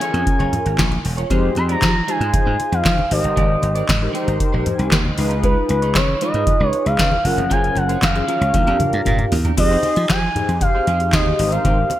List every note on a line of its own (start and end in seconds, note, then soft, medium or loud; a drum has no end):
0.00 0.14 C#4 medium
0.00 0.82 C#4 medium
0.00 0.14 F4 medium
0.00 0.82 F4 medium
0.00 0.82 G#4 medium
0.00 0.07 A4 medium
0.00 0.13 A#4 medium
0.00 0.12 C#5 loud
0.00 1.01 G#5 loud
0.00 closed hi-hat medium
0.08 0.85 A#4 medium
0.14 0.23 F2 medium
0.14 0.25 C#4 soft
0.14 0.25 F4 medium
0.14 0.25 A#4 medium
0.14 0.24 C#5 medium
0.14 closed hi-hat medium
0.26 muted clean electric guitar stroke soft
0.26 kick loud
0.26 closed hi-hat loud
0.39 0.49 F#1 medium
0.39 0.51 C#4 medium
0.39 0.52 F4 medium
0.39 0.52 A#4 medium
0.39 0.52 C#5 medium
0.39 closed hi-hat soft
0.53 muted clean electric guitar stroke soft
0.53 closed hi-hat medium
0.53 low conga medium
0.65 0.75 G#1 medium
0.65 muted clean electric guitar stroke medium
0.65 closed hi-hat medium
0.78 0.97 A#1 medium
0.78 0.92 C#4 medium
0.78 0.91 F4 medium
0.78 0.91 A#4 medium
0.78 0.90 C#5 medium
0.78 kick loud
0.78 snare loud
0.78 clap medium
0.78 closed hi-hat medium
0.78 high conga medium
0.91 muted clean electric guitar stroke soft
0.91 closed hi-hat soft
0.91 high conga medium
1.04 1.23 E1 loud
1.04 muted clean electric guitar stroke soft
1.04 open hi-hat medium
1.17 1.29 C#4 medium
1.17 1.29 F4 medium
1.17 1.28 A#4 medium
1.17 1.28 C#5 medium
1.17 closed hi-hat medium
1.30 1.49 F2 loud
1.30 1.54 G#3 medium
1.30 1.91 D#4 medium
1.30 1.54 D#4 medium
1.30 1.54 F4 medium
1.30 1.91 G4 medium
1.30 1.91 G#4 medium
1.30 1.91 C5 loud
1.30 1.55 C5 medium
1.30 kick loud
1.30 closed hi-hat medium
1.30 muted conga medium
1.55 1.75 F2 medium
1.55 1.63 C6 medium
1.55 muted clean electric guitar stroke soft
1.55 closed hi-hat medium
1.55 muted conga soft
1.68 1.80 G#3 medium
1.68 1.80 D#4 medium
1.68 1.80 F4 medium
1.68 1.79 D5 medium
1.68 2.11 A#5 loud
1.68 closed hi-hat medium
1.82 2.00 F3 medium
1.82 muted clean electric guitar stroke soft
1.82 kick loud
1.82 snare loud
1.82 clap medium
1.82 closed hi-hat medium
1.82 high conga medium
1.95 muted clean electric guitar stroke soft
2.07 2.21 G#3 medium
2.07 2.18 D#4 medium
2.07 2.20 D#4 medium
2.07 2.20 F4 medium
2.07 2.18 G4 medium
2.07 2.18 G#4 medium
2.07 2.18 C5 medium
2.07 2.19 C5 loud
2.07 2.75 G#5 loud
2.07 closed hi-hat medium
2.21 2.30 G#2 medium
2.21 2.32 G#3 soft
2.21 3.02 D#4 medium
2.21 2.32 D#4 medium
2.21 3.02 F4 medium
2.21 2.32 F4 medium
2.21 3.02 G#4 medium
2.21 2.31 C5 medium
2.21 3.02 C5 medium
2.21 closed hi-hat medium
2.33 muted clean electric guitar stroke soft
2.33 kick loud
2.33 closed hi-hat loud
2.33 low conga medium
2.45 2.56 G#2 medium
2.45 2.57 G#3 medium
2.45 2.58 D#4 medium
2.45 2.58 F4 medium
2.45 2.59 C5 medium
2.59 muted clean electric guitar stroke soft
2.59 closed hi-hat medium
2.59 muted conga soft
2.72 2.81 F2 medium
2.72 3.12 F5 loud
2.72 muted clean electric guitar stroke soft
2.72 closed hi-hat medium
2.84 2.95 F3 loud
2.84 muted clean electric guitar stroke soft
2.84 kick medium
2.84 snare medium
2.84 clap medium
2.84 closed hi-hat medium
2.84 high conga medium
2.97 muted clean electric guitar stroke soft
2.97 high conga medium
3.11 3.20 G#1 medium
3.11 3.83 D#4 medium
3.11 3.84 G4 medium
3.11 3.84 A#4 medium
3.11 3.84 C5 medium
3.11 4.11 D#5 loud
3.11 open hi-hat medium
3.23 3.33 G1 loud
3.23 muted clean electric guitar stroke soft
3.23 closed hi-hat medium
3.36 3.55 G#1 loud
3.36 3.60 G#3 medium
3.36 3.61 D#4 medium
3.36 3.61 G4 medium
3.36 3.61 D5 medium
3.36 kick loud
3.36 closed hi-hat medium
3.36 muted conga medium
3.62 3.81 G#1 medium
3.62 muted clean electric guitar stroke soft
3.62 closed hi-hat medium
3.62 muted conga soft
3.75 3.87 G#3 medium
3.75 3.87 D#4 medium
3.75 3.86 G4 medium
3.75 3.86 D5 medium
3.75 closed hi-hat medium
3.88 4.07 G#2 medium
3.88 muted clean electric guitar stroke soft
3.88 kick loud
3.88 snare loud
3.88 clap medium
3.88 closed hi-hat medium
3.88 high conga medium
4.01 4.12 D#4 medium
4.01 4.12 G4 medium
4.01 4.12 A#4 medium
4.01 4.12 C5 medium
4.01 muted clean electric guitar stroke medium
4.13 4.28 G#3 medium
4.13 4.27 D#4 loud
4.13 4.96 D#4 medium
4.13 4.26 G4 loud
4.13 4.96 G4 medium
4.13 4.96 A#4 medium
4.13 4.26 C5 medium
4.13 4.96 C5 loud
4.13 closed hi-hat medium
4.27 4.37 G#1 medium
4.27 4.39 G#3 soft
4.27 4.38 D#4 soft
4.27 4.38 G4 medium
4.27 4.38 C5 medium
4.27 closed hi-hat medium
4.40 muted clean electric guitar stroke soft
4.40 kick loud
4.40 closed hi-hat loud
4.52 4.63 A#1 medium
4.52 4.64 G#3 medium
4.52 4.65 D#4 medium
4.52 4.65 G4 medium
4.52 4.65 C5 medium
4.65 4.91 G#5 medium
4.65 muted clean electric guitar stroke soft
4.65 closed hi-hat medium
4.65 low conga medium
4.78 4.88 C2 loud
4.78 muted clean electric guitar stroke medium
4.78 closed hi-hat medium
4.91 5.10 D#2 medium
4.91 5.05 G#3 medium
4.91 5.05 D#4 medium
4.91 5.04 G4 medium
4.91 5.03 C5 medium
4.91 5.04 G5 medium
4.91 kick medium
4.91 snare loud
4.91 clap medium
4.91 closed hi-hat medium
4.91 high conga medium
5.05 5.30 D#5 medium
5.05 muted clean electric guitar stroke soft
5.05 high conga medium
5.17 5.55 C#2 medium
5.17 6.01 D#4 loud
5.17 6.01 F4 medium
5.17 6.01 G#4 medium
5.17 6.01 B4 loud
5.17 muted clean electric guitar stroke soft
5.17 open hi-hat medium
5.30 5.41 G#3 soft
5.30 5.42 D#4 medium
5.30 5.42 F4 medium
5.30 5.41 B4 medium
5.30 closed hi-hat medium
5.43 5.67 G#3 medium
5.43 5.67 D#4 medium
5.43 5.68 F4 medium
5.43 5.68 B4 medium
5.43 kick loud
5.43 closed hi-hat medium
5.43 muted conga soft
5.69 5.97 C#2 loud
5.69 5.98 B4 medium
5.69 muted clean electric guitar stroke soft
5.69 closed hi-hat medium
5.69 muted conga soft
5.82 5.94 G#3 medium
5.82 5.94 D#4 medium
5.82 5.93 F4 medium
5.82 5.93 C#5 medium
5.82 closed hi-hat medium
5.95 6.14 C#3 medium
5.95 6.22 C#5 medium
5.95 muted clean electric guitar stroke soft
5.95 kick loud
5.95 snare loud
5.95 clap medium
5.95 closed hi-hat medium
5.95 high conga medium
6.08 muted clean electric guitar stroke medium
6.21 6.35 G#3 medium
6.21 6.31 D#4 medium
6.21 6.34 D#4 medium
6.21 6.32 F4 medium
6.21 6.34 F4 loud
6.21 6.32 G#4 medium
6.21 6.33 B4 loud
6.21 6.32 C#5 medium
6.21 6.68 D#5 loud
6.21 closed hi-hat medium
6.34 6.43 G#2 medium
6.34 6.46 G#3 soft
6.34 7.15 D#4 medium
6.34 6.46 D#4 soft
6.34 7.15 F4 medium
6.34 6.45 F4 medium
6.34 7.16 G#4 medium
6.34 6.45 B4 medium
6.34 7.16 B4 medium
6.34 closed hi-hat medium
6.47 muted clean electric guitar stroke medium
6.47 kick loud
6.47 closed hi-hat loud
6.47 low conga medium
6.60 6.69 C#2 medium
6.60 6.72 G#3 medium
6.60 6.72 D#4 medium
6.60 6.73 F4 medium
6.60 6.73 B4 medium
6.68 6.88 C#5 loud
6.73 muted clean electric guitar stroke soft
6.73 closed hi-hat medium
6.73 muted conga soft
6.85 6.95 C#2 medium
6.85 7.27 F5 loud
6.85 muted clean electric guitar stroke soft
6.85 closed hi-hat medium
6.99 7.08 C#3 loud
6.99 muted clean electric guitar stroke soft
6.99 kick loud
6.99 snare loud
6.99 clap medium
6.99 closed hi-hat medium
6.99 high conga medium
7.12 muted clean electric guitar stroke soft
7.12 high conga medium
7.25 7.34 F#1 medium
7.25 7.97 C#4 medium
7.25 7.98 F4 medium
7.25 7.98 G#4 medium
7.25 7.98 A#4 loud
7.25 7.53 F#5 loud
7.25 open hi-hat medium
7.37 7.47 F1 medium
7.37 muted clean electric guitar stroke soft
7.37 closed hi-hat medium
7.50 7.69 F#1 loud
7.50 7.74 F#3 medium
7.50 7.74 C#4 medium
7.50 7.75 F4 medium
7.50 7.75 C5 medium
7.50 7.79 G#5 loud
7.50 kick loud
7.50 closed hi-hat medium
7.50 muted conga soft
7.64 closed hi-hat soft
7.75 7.95 F#1 medium
7.75 8.05 F#5 loud
7.75 muted clean electric guitar stroke soft
7.75 closed hi-hat medium
7.75 muted conga soft
7.89 8.01 F#3 medium
7.89 8.01 C#4 medium
7.89 8.00 F4 medium
7.89 8.00 C5 medium
7.89 closed hi-hat medium
8.02 8.21 F#2 loud
8.02 9.32 F5 loud
8.02 muted clean electric guitar stroke soft
8.02 kick loud
8.02 snare loud
8.02 clap medium
8.02 closed hi-hat medium
8.02 high conga medium
8.15 8.25 C#4 medium
8.15 8.26 F4 medium
8.15 8.26 G#4 medium
8.15 8.26 C5 medium
8.15 muted clean electric guitar stroke medium
8.15 closed hi-hat soft
8.28 8.42 F#3 medium
8.28 8.54 C#4 medium
8.28 8.41 C#4 medium
8.28 8.53 F4 medium
8.28 8.40 F4 loud
8.28 8.54 G#4 medium
8.28 8.40 A#4 loud
8.28 8.55 C#5 medium
8.28 closed hi-hat medium
8.41 8.50 C#2 medium
8.41 8.53 F#3 soft
8.41 8.52 C#4 medium
8.41 8.52 F4 medium
8.41 8.52 A#4 medium
8.41 closed hi-hat medium
8.54 8.63 D#2 loud
8.54 9.37 D4 medium
8.54 9.37 F4 medium
8.54 9.37 G4 medium
8.54 9.37 A#4 medium
8.54 muted clean electric guitar stroke soft
8.54 kick loud
8.54 closed hi-hat loud
8.54 high tom medium
8.67 8.76 F2 medium
8.67 8.79 A#3 medium
8.67 8.80 D4 medium
8.67 8.80 G4 medium
8.67 8.80 A#4 medium
8.67 closed hi-hat soft
8.80 muted clean electric guitar stroke soft
8.80 closed hi-hat medium
8.80 mid tom medium
8.80 muted conga soft
8.80 low conga medium
8.93 9.02 G2 medium
8.93 muted clean electric guitar stroke soft
8.93 closed hi-hat medium
9.05 9.24 A#2 medium
9.05 9.20 A#3 medium
9.05 9.19 D4 medium
9.05 9.18 G4 medium
9.05 9.18 A#4 medium
9.05 kick medium
9.05 closed hi-hat medium
9.05 mid tom medium
9.05 high conga medium
9.18 muted clean electric guitar stroke soft
9.18 closed hi-hat soft
9.18 mid tom medium
9.18 high conga medium
9.32 9.50 E2 loud
9.32 muted clean electric guitar stroke soft
9.32 floor tom loud
9.32 open hi-hat medium
9.45 9.56 A#3 soft
9.45 9.56 D4 medium
9.45 9.56 G4 medium
9.45 9.55 A#4 medium
9.45 closed hi-hat medium
9.45 floor tom loud
9.57 9.76 F2 loud
9.57 10.18 D#4 medium
9.57 10.18 G4 medium
9.57 10.19 G#4 medium
9.57 10.19 C5 medium
9.57 10.06 D#5 loud
9.57 muted clean electric guitar stroke soft
9.57 kick loud
9.57 closed hi-hat medium
9.57 crash loud
9.57 muted conga medium
9.71 9.83 C4 medium
9.71 9.84 D#4 medium
9.71 9.84 G#4 medium
9.71 9.85 C5 medium
9.83 9.95 C4 medium
9.83 9.95 D#4 medium
9.83 9.95 G#4 medium
9.83 9.95 C5 medium
9.83 closed hi-hat medium
9.83 muted conga soft
9.96 10.06 F3 loud
9.96 muted clean electric guitar stroke soft
9.96 closed hi-hat medium
10.09 10.28 F3 medium
10.09 10.58 G#5 loud
10.09 muted clean electric guitar stroke soft
10.09 kick loud
10.09 snare loud
10.09 clap loud
10.09 closed hi-hat medium
10.09 high conga medium
10.23 muted clean electric guitar stroke medium
10.35 10.86 D#4 medium
10.35 10.86 G4 medium
10.35 10.86 G#4 medium
10.35 10.86 C5 medium
10.35 closed hi-hat medium
10.35 low conga medium
10.49 10.58 F2 medium
10.49 muted clean electric guitar stroke soft
10.49 closed hi-hat medium
10.61 11.15 F5 loud
10.61 muted clean electric guitar stroke soft
10.61 kick loud
10.61 closed hi-hat loud
10.61 low conga medium
10.75 10.86 C4 medium
10.75 10.86 D#4 medium
10.75 10.86 G#4 medium
10.75 10.85 C5 medium
10.87 11.13 F2 medium
10.87 11.01 C4 medium
10.87 11.01 D#4 medium
10.87 11.00 G#4 medium
10.87 11.00 C5 medium
10.87 closed hi-hat medium
10.87 muted conga soft
11.00 11.38 D#4 medium
11.00 11.38 G4 medium
11.00 11.39 G#4 medium
11.00 11.38 C5 medium
11.00 muted clean electric guitar stroke soft
11.00 closed hi-hat medium
11.13 11.31 D#2 loud
11.13 11.27 C4 loud
11.13 11.27 D#4 medium
11.13 11.26 G#4 medium
11.13 11.25 C5 medium
11.13 11.53 D#5 medium
11.13 kick loud
11.13 snare loud
11.13 clap medium
11.13 closed hi-hat loud
11.13 high conga medium
11.26 muted clean electric guitar stroke soft
11.26 high conga medium
11.39 11.57 G#1 loud
11.39 11.90 D#4 medium
11.39 11.91 G4 medium
11.39 11.91 A#4 medium
11.39 11.91 C5 medium
11.39 muted clean electric guitar stroke soft
11.39 open hi-hat medium
11.51 11.63 C4 medium
11.51 11.63 D#4 medium
11.51 11.63 G4 medium
11.51 11.63 C5 medium
11.51 12.00 F5 loud
11.51 closed hi-hat medium
11.64 11.83 G#1 loud
11.64 11.78 C4 medium
11.64 11.79 D#4 medium
11.64 11.78 G4 medium
11.64 11.77 C5 medium
11.64 kick loud
11.64 closed hi-hat medium
11.64 muted conga medium
11.78 muted clean electric guitar stroke medium
11.90 muted clean electric guitar stroke medium
11.90 closed hi-hat medium
11.90 muted conga soft